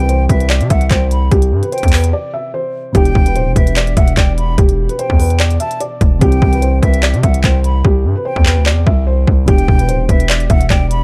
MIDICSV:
0, 0, Header, 1, 6, 480
1, 0, Start_track
1, 0, Key_signature, 1, "minor"
1, 0, Tempo, 408163
1, 1546, Time_signature, 4, 2, 24, 8
1, 12980, End_track
2, 0, Start_track
2, 0, Title_t, "Flute"
2, 0, Program_c, 0, 73
2, 0, Note_on_c, 0, 79, 104
2, 301, Note_off_c, 0, 79, 0
2, 344, Note_on_c, 0, 76, 89
2, 797, Note_off_c, 0, 76, 0
2, 823, Note_on_c, 0, 78, 88
2, 1053, Note_off_c, 0, 78, 0
2, 1066, Note_on_c, 0, 79, 74
2, 1294, Note_off_c, 0, 79, 0
2, 1305, Note_on_c, 0, 83, 78
2, 1534, Note_off_c, 0, 83, 0
2, 2026, Note_on_c, 0, 79, 88
2, 2478, Note_off_c, 0, 79, 0
2, 3469, Note_on_c, 0, 79, 117
2, 4145, Note_off_c, 0, 79, 0
2, 4187, Note_on_c, 0, 76, 83
2, 4638, Note_off_c, 0, 76, 0
2, 4668, Note_on_c, 0, 78, 94
2, 4895, Note_off_c, 0, 78, 0
2, 4906, Note_on_c, 0, 79, 94
2, 5135, Note_off_c, 0, 79, 0
2, 5145, Note_on_c, 0, 83, 82
2, 5374, Note_off_c, 0, 83, 0
2, 5866, Note_on_c, 0, 79, 94
2, 6543, Note_off_c, 0, 79, 0
2, 6584, Note_on_c, 0, 81, 86
2, 6814, Note_off_c, 0, 81, 0
2, 7305, Note_on_c, 0, 79, 104
2, 7983, Note_off_c, 0, 79, 0
2, 8027, Note_on_c, 0, 76, 90
2, 8478, Note_off_c, 0, 76, 0
2, 8502, Note_on_c, 0, 78, 88
2, 8732, Note_off_c, 0, 78, 0
2, 8746, Note_on_c, 0, 79, 75
2, 8974, Note_off_c, 0, 79, 0
2, 8987, Note_on_c, 0, 83, 81
2, 9215, Note_off_c, 0, 83, 0
2, 9707, Note_on_c, 0, 79, 84
2, 10158, Note_off_c, 0, 79, 0
2, 11145, Note_on_c, 0, 79, 123
2, 11823, Note_off_c, 0, 79, 0
2, 11867, Note_on_c, 0, 76, 84
2, 12318, Note_off_c, 0, 76, 0
2, 12348, Note_on_c, 0, 78, 97
2, 12575, Note_off_c, 0, 78, 0
2, 12586, Note_on_c, 0, 79, 95
2, 12814, Note_off_c, 0, 79, 0
2, 12826, Note_on_c, 0, 83, 88
2, 12980, Note_off_c, 0, 83, 0
2, 12980, End_track
3, 0, Start_track
3, 0, Title_t, "Felt piano"
3, 0, Program_c, 1, 0
3, 107, Note_on_c, 1, 72, 80
3, 307, Note_off_c, 1, 72, 0
3, 347, Note_on_c, 1, 71, 74
3, 546, Note_off_c, 1, 71, 0
3, 584, Note_on_c, 1, 74, 91
3, 785, Note_off_c, 1, 74, 0
3, 827, Note_on_c, 1, 76, 93
3, 1027, Note_off_c, 1, 76, 0
3, 1067, Note_on_c, 1, 72, 79
3, 1518, Note_off_c, 1, 72, 0
3, 1545, Note_on_c, 1, 67, 95
3, 1891, Note_off_c, 1, 67, 0
3, 1914, Note_on_c, 1, 71, 85
3, 2008, Note_off_c, 1, 71, 0
3, 2026, Note_on_c, 1, 72, 90
3, 2226, Note_off_c, 1, 72, 0
3, 2266, Note_on_c, 1, 71, 82
3, 2466, Note_off_c, 1, 71, 0
3, 2507, Note_on_c, 1, 74, 84
3, 2707, Note_off_c, 1, 74, 0
3, 2747, Note_on_c, 1, 76, 79
3, 2947, Note_off_c, 1, 76, 0
3, 2986, Note_on_c, 1, 72, 81
3, 3438, Note_off_c, 1, 72, 0
3, 3466, Note_on_c, 1, 67, 112
3, 3812, Note_off_c, 1, 67, 0
3, 3835, Note_on_c, 1, 71, 68
3, 3928, Note_off_c, 1, 71, 0
3, 3948, Note_on_c, 1, 72, 86
3, 4148, Note_off_c, 1, 72, 0
3, 4188, Note_on_c, 1, 71, 74
3, 4388, Note_off_c, 1, 71, 0
3, 4429, Note_on_c, 1, 74, 87
3, 4628, Note_off_c, 1, 74, 0
3, 4668, Note_on_c, 1, 76, 88
3, 4867, Note_off_c, 1, 76, 0
3, 4907, Note_on_c, 1, 74, 74
3, 5358, Note_off_c, 1, 74, 0
3, 5388, Note_on_c, 1, 67, 94
3, 5733, Note_off_c, 1, 67, 0
3, 5754, Note_on_c, 1, 71, 83
3, 5848, Note_off_c, 1, 71, 0
3, 5869, Note_on_c, 1, 72, 89
3, 6068, Note_off_c, 1, 72, 0
3, 6108, Note_on_c, 1, 71, 82
3, 6307, Note_off_c, 1, 71, 0
3, 6347, Note_on_c, 1, 74, 91
3, 6547, Note_off_c, 1, 74, 0
3, 6586, Note_on_c, 1, 76, 77
3, 6786, Note_off_c, 1, 76, 0
3, 6826, Note_on_c, 1, 74, 84
3, 7278, Note_off_c, 1, 74, 0
3, 7306, Note_on_c, 1, 67, 108
3, 7651, Note_off_c, 1, 67, 0
3, 7674, Note_on_c, 1, 71, 74
3, 7768, Note_off_c, 1, 71, 0
3, 7787, Note_on_c, 1, 72, 78
3, 7986, Note_off_c, 1, 72, 0
3, 8026, Note_on_c, 1, 71, 75
3, 8226, Note_off_c, 1, 71, 0
3, 8266, Note_on_c, 1, 74, 88
3, 8466, Note_off_c, 1, 74, 0
3, 8504, Note_on_c, 1, 76, 88
3, 8705, Note_off_c, 1, 76, 0
3, 8745, Note_on_c, 1, 72, 74
3, 9197, Note_off_c, 1, 72, 0
3, 9225, Note_on_c, 1, 67, 95
3, 9571, Note_off_c, 1, 67, 0
3, 9593, Note_on_c, 1, 71, 86
3, 9687, Note_off_c, 1, 71, 0
3, 9704, Note_on_c, 1, 72, 86
3, 9905, Note_off_c, 1, 72, 0
3, 9945, Note_on_c, 1, 71, 81
3, 10145, Note_off_c, 1, 71, 0
3, 10184, Note_on_c, 1, 74, 89
3, 10385, Note_off_c, 1, 74, 0
3, 10425, Note_on_c, 1, 76, 82
3, 10626, Note_off_c, 1, 76, 0
3, 10664, Note_on_c, 1, 72, 82
3, 11116, Note_off_c, 1, 72, 0
3, 11145, Note_on_c, 1, 67, 111
3, 11491, Note_off_c, 1, 67, 0
3, 11513, Note_on_c, 1, 71, 71
3, 11607, Note_off_c, 1, 71, 0
3, 11625, Note_on_c, 1, 72, 85
3, 11826, Note_off_c, 1, 72, 0
3, 11867, Note_on_c, 1, 71, 75
3, 12067, Note_off_c, 1, 71, 0
3, 12106, Note_on_c, 1, 74, 89
3, 12306, Note_off_c, 1, 74, 0
3, 12347, Note_on_c, 1, 76, 87
3, 12547, Note_off_c, 1, 76, 0
3, 12587, Note_on_c, 1, 74, 76
3, 12980, Note_off_c, 1, 74, 0
3, 12980, End_track
4, 0, Start_track
4, 0, Title_t, "Synth keys"
4, 0, Program_c, 2, 88
4, 0, Control_c, 2, 64, 127
4, 0, Note_on_c, 2, 48, 70
4, 0, Note_on_c, 2, 52, 57
4, 0, Note_on_c, 2, 60, 61
4, 0, Note_on_c, 2, 67, 74
4, 3407, Note_off_c, 2, 48, 0
4, 3415, Note_off_c, 2, 52, 0
4, 3424, Note_off_c, 2, 60, 0
4, 3433, Note_off_c, 2, 67, 0
4, 3440, Note_on_c, 2, 47, 71
4, 3457, Note_on_c, 2, 52, 65
4, 3475, Note_on_c, 2, 62, 62
4, 3482, Control_c, 2, 64, 0
4, 3493, Note_on_c, 2, 67, 69
4, 3719, Control_c, 2, 64, 127
4, 7246, Note_off_c, 2, 47, 0
4, 7255, Note_off_c, 2, 52, 0
4, 7264, Note_off_c, 2, 62, 0
4, 7273, Note_off_c, 2, 67, 0
4, 7281, Note_on_c, 2, 48, 70
4, 7298, Note_on_c, 2, 52, 58
4, 7316, Note_on_c, 2, 60, 62
4, 7324, Control_c, 2, 64, 0
4, 7334, Note_on_c, 2, 67, 76
4, 7562, Control_c, 2, 64, 127
4, 11087, Note_off_c, 2, 48, 0
4, 11096, Note_off_c, 2, 52, 0
4, 11105, Note_off_c, 2, 60, 0
4, 11114, Note_off_c, 2, 67, 0
4, 11119, Note_on_c, 2, 47, 72
4, 11137, Note_on_c, 2, 52, 64
4, 11155, Note_on_c, 2, 62, 63
4, 11163, Control_c, 2, 64, 0
4, 11172, Note_on_c, 2, 67, 71
4, 11363, Control_c, 2, 64, 127
4, 12980, Note_off_c, 2, 47, 0
4, 12980, Note_off_c, 2, 52, 0
4, 12980, Note_off_c, 2, 62, 0
4, 12980, Note_off_c, 2, 67, 0
4, 12980, End_track
5, 0, Start_track
5, 0, Title_t, "808-style bass"
5, 0, Program_c, 3, 38
5, 0, Note_on_c, 3, 36, 113
5, 328, Note_off_c, 3, 36, 0
5, 346, Note_on_c, 3, 36, 109
5, 714, Note_on_c, 3, 48, 101
5, 732, Note_off_c, 3, 36, 0
5, 821, Note_off_c, 3, 48, 0
5, 827, Note_on_c, 3, 36, 104
5, 1057, Note_off_c, 3, 36, 0
5, 1066, Note_on_c, 3, 36, 108
5, 1527, Note_off_c, 3, 36, 0
5, 1547, Note_on_c, 3, 36, 109
5, 1787, Note_on_c, 3, 43, 105
5, 1805, Note_off_c, 3, 36, 0
5, 1908, Note_off_c, 3, 43, 0
5, 2155, Note_on_c, 3, 40, 107
5, 2507, Note_off_c, 3, 40, 0
5, 3467, Note_on_c, 3, 28, 112
5, 3697, Note_off_c, 3, 28, 0
5, 3707, Note_on_c, 3, 28, 113
5, 3947, Note_on_c, 3, 26, 104
5, 3964, Note_off_c, 3, 28, 0
5, 4074, Note_on_c, 3, 28, 103
5, 4092, Note_off_c, 3, 26, 0
5, 4179, Note_off_c, 3, 28, 0
5, 4186, Note_on_c, 3, 28, 107
5, 4647, Note_off_c, 3, 28, 0
5, 4667, Note_on_c, 3, 28, 108
5, 4897, Note_off_c, 3, 28, 0
5, 4907, Note_on_c, 3, 28, 105
5, 5368, Note_off_c, 3, 28, 0
5, 5387, Note_on_c, 3, 28, 117
5, 5740, Note_off_c, 3, 28, 0
5, 5995, Note_on_c, 3, 40, 105
5, 6564, Note_off_c, 3, 40, 0
5, 7068, Note_on_c, 3, 28, 110
5, 7298, Note_off_c, 3, 28, 0
5, 7308, Note_on_c, 3, 36, 117
5, 7538, Note_off_c, 3, 36, 0
5, 7549, Note_on_c, 3, 36, 108
5, 8009, Note_off_c, 3, 36, 0
5, 8027, Note_on_c, 3, 36, 105
5, 8394, Note_on_c, 3, 48, 101
5, 8411, Note_off_c, 3, 36, 0
5, 8501, Note_off_c, 3, 48, 0
5, 8508, Note_on_c, 3, 36, 108
5, 8738, Note_off_c, 3, 36, 0
5, 8747, Note_on_c, 3, 36, 106
5, 9207, Note_off_c, 3, 36, 0
5, 9227, Note_on_c, 3, 36, 109
5, 9467, Note_on_c, 3, 43, 106
5, 9484, Note_off_c, 3, 36, 0
5, 9588, Note_off_c, 3, 43, 0
5, 9835, Note_on_c, 3, 40, 109
5, 10073, Note_on_c, 3, 38, 100
5, 10091, Note_off_c, 3, 40, 0
5, 10248, Note_on_c, 3, 40, 105
5, 10266, Note_off_c, 3, 38, 0
5, 10417, Note_off_c, 3, 40, 0
5, 10427, Note_on_c, 3, 36, 108
5, 10888, Note_off_c, 3, 36, 0
5, 10907, Note_on_c, 3, 36, 107
5, 11137, Note_off_c, 3, 36, 0
5, 11147, Note_on_c, 3, 28, 111
5, 11377, Note_off_c, 3, 28, 0
5, 11388, Note_on_c, 3, 28, 114
5, 11626, Note_on_c, 3, 26, 101
5, 11644, Note_off_c, 3, 28, 0
5, 11754, Note_on_c, 3, 28, 102
5, 11772, Note_off_c, 3, 26, 0
5, 11861, Note_off_c, 3, 28, 0
5, 11866, Note_on_c, 3, 28, 105
5, 12327, Note_off_c, 3, 28, 0
5, 12347, Note_on_c, 3, 28, 105
5, 12577, Note_off_c, 3, 28, 0
5, 12586, Note_on_c, 3, 28, 107
5, 12980, Note_off_c, 3, 28, 0
5, 12980, End_track
6, 0, Start_track
6, 0, Title_t, "Drums"
6, 106, Note_on_c, 9, 42, 80
6, 224, Note_off_c, 9, 42, 0
6, 346, Note_on_c, 9, 36, 92
6, 349, Note_on_c, 9, 42, 84
6, 464, Note_off_c, 9, 36, 0
6, 467, Note_off_c, 9, 42, 0
6, 476, Note_on_c, 9, 42, 69
6, 586, Note_on_c, 9, 39, 125
6, 588, Note_off_c, 9, 42, 0
6, 588, Note_on_c, 9, 42, 82
6, 704, Note_off_c, 9, 39, 0
6, 706, Note_off_c, 9, 42, 0
6, 713, Note_on_c, 9, 42, 62
6, 826, Note_off_c, 9, 42, 0
6, 826, Note_on_c, 9, 42, 87
6, 827, Note_on_c, 9, 36, 100
6, 944, Note_off_c, 9, 42, 0
6, 945, Note_off_c, 9, 36, 0
6, 953, Note_on_c, 9, 42, 65
6, 1066, Note_on_c, 9, 36, 98
6, 1066, Note_on_c, 9, 39, 88
6, 1067, Note_off_c, 9, 42, 0
6, 1067, Note_on_c, 9, 42, 73
6, 1183, Note_off_c, 9, 36, 0
6, 1184, Note_off_c, 9, 39, 0
6, 1184, Note_off_c, 9, 42, 0
6, 1307, Note_on_c, 9, 42, 75
6, 1425, Note_off_c, 9, 42, 0
6, 1546, Note_on_c, 9, 42, 74
6, 1547, Note_on_c, 9, 36, 115
6, 1664, Note_off_c, 9, 36, 0
6, 1664, Note_off_c, 9, 42, 0
6, 1672, Note_on_c, 9, 42, 53
6, 1789, Note_off_c, 9, 42, 0
6, 1915, Note_on_c, 9, 42, 67
6, 2028, Note_off_c, 9, 42, 0
6, 2028, Note_on_c, 9, 42, 52
6, 2091, Note_off_c, 9, 42, 0
6, 2091, Note_on_c, 9, 42, 65
6, 2154, Note_off_c, 9, 42, 0
6, 2154, Note_on_c, 9, 36, 95
6, 2154, Note_on_c, 9, 42, 74
6, 2211, Note_off_c, 9, 42, 0
6, 2211, Note_on_c, 9, 42, 85
6, 2267, Note_on_c, 9, 39, 106
6, 2270, Note_on_c, 9, 46, 87
6, 2272, Note_off_c, 9, 36, 0
6, 2329, Note_off_c, 9, 42, 0
6, 2385, Note_off_c, 9, 39, 0
6, 2387, Note_off_c, 9, 46, 0
6, 2396, Note_on_c, 9, 42, 71
6, 2514, Note_off_c, 9, 42, 0
6, 3466, Note_on_c, 9, 42, 74
6, 3467, Note_on_c, 9, 36, 117
6, 3584, Note_off_c, 9, 36, 0
6, 3584, Note_off_c, 9, 42, 0
6, 3592, Note_on_c, 9, 42, 53
6, 3707, Note_on_c, 9, 36, 98
6, 3709, Note_off_c, 9, 42, 0
6, 3825, Note_off_c, 9, 36, 0
6, 3834, Note_on_c, 9, 42, 66
6, 3947, Note_off_c, 9, 42, 0
6, 3947, Note_on_c, 9, 42, 80
6, 4064, Note_off_c, 9, 42, 0
6, 4186, Note_on_c, 9, 36, 93
6, 4189, Note_on_c, 9, 42, 84
6, 4304, Note_off_c, 9, 36, 0
6, 4307, Note_off_c, 9, 42, 0
6, 4316, Note_on_c, 9, 42, 69
6, 4427, Note_on_c, 9, 39, 118
6, 4428, Note_off_c, 9, 42, 0
6, 4428, Note_on_c, 9, 42, 84
6, 4544, Note_off_c, 9, 39, 0
6, 4546, Note_off_c, 9, 42, 0
6, 4554, Note_on_c, 9, 42, 61
6, 4666, Note_off_c, 9, 42, 0
6, 4666, Note_on_c, 9, 42, 87
6, 4667, Note_on_c, 9, 36, 103
6, 4784, Note_off_c, 9, 42, 0
6, 4785, Note_off_c, 9, 36, 0
6, 4793, Note_on_c, 9, 42, 65
6, 4906, Note_on_c, 9, 36, 99
6, 4907, Note_off_c, 9, 42, 0
6, 4907, Note_on_c, 9, 39, 92
6, 4907, Note_on_c, 9, 42, 73
6, 5024, Note_off_c, 9, 36, 0
6, 5025, Note_off_c, 9, 39, 0
6, 5025, Note_off_c, 9, 42, 0
6, 5149, Note_on_c, 9, 42, 77
6, 5266, Note_off_c, 9, 42, 0
6, 5387, Note_on_c, 9, 36, 120
6, 5387, Note_on_c, 9, 42, 75
6, 5504, Note_off_c, 9, 42, 0
6, 5505, Note_off_c, 9, 36, 0
6, 5513, Note_on_c, 9, 42, 56
6, 5630, Note_off_c, 9, 42, 0
6, 5755, Note_on_c, 9, 42, 65
6, 5868, Note_off_c, 9, 42, 0
6, 5868, Note_on_c, 9, 42, 84
6, 5986, Note_off_c, 9, 42, 0
6, 5995, Note_on_c, 9, 36, 94
6, 6111, Note_on_c, 9, 46, 87
6, 6113, Note_off_c, 9, 36, 0
6, 6228, Note_off_c, 9, 46, 0
6, 6237, Note_on_c, 9, 42, 69
6, 6347, Note_on_c, 9, 39, 124
6, 6349, Note_off_c, 9, 42, 0
6, 6349, Note_on_c, 9, 42, 83
6, 6465, Note_off_c, 9, 39, 0
6, 6467, Note_off_c, 9, 42, 0
6, 6474, Note_on_c, 9, 42, 62
6, 6586, Note_off_c, 9, 42, 0
6, 6586, Note_on_c, 9, 42, 91
6, 6704, Note_off_c, 9, 42, 0
6, 6713, Note_on_c, 9, 42, 67
6, 6827, Note_off_c, 9, 42, 0
6, 6827, Note_on_c, 9, 42, 71
6, 6944, Note_off_c, 9, 42, 0
6, 7068, Note_on_c, 9, 36, 105
6, 7068, Note_on_c, 9, 42, 75
6, 7185, Note_off_c, 9, 36, 0
6, 7185, Note_off_c, 9, 42, 0
6, 7307, Note_on_c, 9, 42, 75
6, 7308, Note_on_c, 9, 36, 114
6, 7424, Note_off_c, 9, 42, 0
6, 7425, Note_off_c, 9, 36, 0
6, 7433, Note_on_c, 9, 42, 54
6, 7549, Note_on_c, 9, 36, 102
6, 7551, Note_off_c, 9, 42, 0
6, 7666, Note_off_c, 9, 36, 0
6, 7676, Note_on_c, 9, 42, 64
6, 7789, Note_off_c, 9, 42, 0
6, 7789, Note_on_c, 9, 42, 83
6, 7906, Note_off_c, 9, 42, 0
6, 8027, Note_on_c, 9, 36, 94
6, 8031, Note_on_c, 9, 42, 85
6, 8145, Note_off_c, 9, 36, 0
6, 8148, Note_off_c, 9, 42, 0
6, 8157, Note_on_c, 9, 42, 70
6, 8267, Note_on_c, 9, 39, 122
6, 8269, Note_off_c, 9, 42, 0
6, 8269, Note_on_c, 9, 42, 83
6, 8385, Note_off_c, 9, 39, 0
6, 8386, Note_off_c, 9, 42, 0
6, 8394, Note_on_c, 9, 42, 62
6, 8507, Note_off_c, 9, 42, 0
6, 8507, Note_on_c, 9, 42, 91
6, 8508, Note_on_c, 9, 36, 104
6, 8624, Note_off_c, 9, 42, 0
6, 8625, Note_off_c, 9, 36, 0
6, 8634, Note_on_c, 9, 42, 67
6, 8746, Note_on_c, 9, 36, 98
6, 8747, Note_off_c, 9, 42, 0
6, 8747, Note_on_c, 9, 39, 93
6, 8747, Note_on_c, 9, 42, 75
6, 8864, Note_off_c, 9, 36, 0
6, 8865, Note_off_c, 9, 39, 0
6, 8865, Note_off_c, 9, 42, 0
6, 8988, Note_on_c, 9, 42, 77
6, 9106, Note_off_c, 9, 42, 0
6, 9227, Note_on_c, 9, 36, 117
6, 9345, Note_off_c, 9, 36, 0
6, 9834, Note_on_c, 9, 36, 93
6, 9946, Note_on_c, 9, 39, 106
6, 9952, Note_off_c, 9, 36, 0
6, 10063, Note_off_c, 9, 39, 0
6, 10185, Note_on_c, 9, 39, 124
6, 10303, Note_off_c, 9, 39, 0
6, 10427, Note_on_c, 9, 36, 104
6, 10544, Note_off_c, 9, 36, 0
6, 10907, Note_on_c, 9, 36, 107
6, 11024, Note_off_c, 9, 36, 0
6, 11146, Note_on_c, 9, 36, 121
6, 11146, Note_on_c, 9, 42, 75
6, 11263, Note_off_c, 9, 42, 0
6, 11264, Note_off_c, 9, 36, 0
6, 11271, Note_on_c, 9, 42, 55
6, 11387, Note_on_c, 9, 36, 97
6, 11389, Note_off_c, 9, 42, 0
6, 11505, Note_off_c, 9, 36, 0
6, 11515, Note_on_c, 9, 42, 67
6, 11627, Note_off_c, 9, 42, 0
6, 11627, Note_on_c, 9, 42, 85
6, 11745, Note_off_c, 9, 42, 0
6, 11866, Note_on_c, 9, 36, 93
6, 11869, Note_on_c, 9, 42, 83
6, 11984, Note_off_c, 9, 36, 0
6, 11987, Note_off_c, 9, 42, 0
6, 11996, Note_on_c, 9, 42, 70
6, 12107, Note_on_c, 9, 39, 123
6, 12108, Note_off_c, 9, 42, 0
6, 12108, Note_on_c, 9, 42, 82
6, 12224, Note_off_c, 9, 39, 0
6, 12226, Note_off_c, 9, 42, 0
6, 12234, Note_on_c, 9, 42, 63
6, 12346, Note_off_c, 9, 42, 0
6, 12346, Note_on_c, 9, 42, 87
6, 12347, Note_on_c, 9, 36, 102
6, 12463, Note_off_c, 9, 42, 0
6, 12465, Note_off_c, 9, 36, 0
6, 12473, Note_on_c, 9, 42, 66
6, 12586, Note_on_c, 9, 36, 98
6, 12587, Note_off_c, 9, 42, 0
6, 12587, Note_on_c, 9, 39, 91
6, 12587, Note_on_c, 9, 42, 73
6, 12704, Note_off_c, 9, 36, 0
6, 12704, Note_off_c, 9, 39, 0
6, 12705, Note_off_c, 9, 42, 0
6, 12828, Note_on_c, 9, 42, 78
6, 12946, Note_off_c, 9, 42, 0
6, 12980, End_track
0, 0, End_of_file